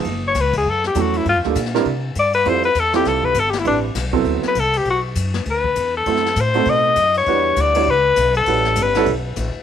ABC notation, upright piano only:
X:1
M:4/4
L:1/8
Q:"Swing" 1/4=200
K:F#phr
V:1 name="Upright piano"
z6 [F,A,CEA]2 | z [G,_B,D=FA] z [G,=CDE_B] z4 | [G,=CE=FA] z2 [G,CEFA]3 z2 | [G,=CDEB] z2 [F,B,CEA]3 z2 |
z8 | [A,=CEFA] z2 [A,C_EFA]3 z2 | [G,DEFB]3 [G,DEFc] z4 | [G,CEFB]3 [G,CEFA] z4 |]